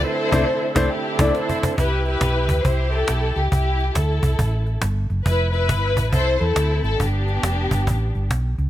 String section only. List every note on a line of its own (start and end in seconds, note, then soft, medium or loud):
0.05 0.88 E4 medium
0.05 0.74 A4 medium
0.05 0.72 C5 loud
0.76 0.92 A4 medium
0.91 1.74 D4 medium
0.91 1.34 E4 medium
0.91 1.19 G4 medium
1.20 1.34 A4 medium
1.34 1.75 E4 medium
1.34 1.75 A4 medium
1.34 1.70 C5 medium
1.79 2.06 E4 medium
1.79 2.06 G4 medium
1.79 2.05 B4 medium
2.07 2.64 E4 medium
2.07 2.64 G4 medium
2.07 2.62 B4 medium
2.65 2.91 E4 medium
2.65 3.36 G4 medium
2.65 2.93 C5 medium
2.92 3.48 E4 medium
2.92 3.36 A4 medium
3.37 3.51 G4 medium
3.52 3.95 E4 medium
3.52 3.93 G4 medium
3.95 4.79 E4 medium
3.95 4.82 A4 medium
5.26 5.52 E4 medium
5.26 5.51 B4 medium
5.53 6.11 E4 medium
5.53 6.08 B4 medium
6.13 6.39 E4 medium
6.13 6.39 A4 medium
6.13 6.41 C5 loud
6.40 6.96 C4 medium
6.40 6.96 E4 medium
6.40 6.83 A4 loud
6.84 6.99 A4 loud
7.01 8.27 B3 medium
7.01 8.27 D4 medium
7.01 8.31 G4 medium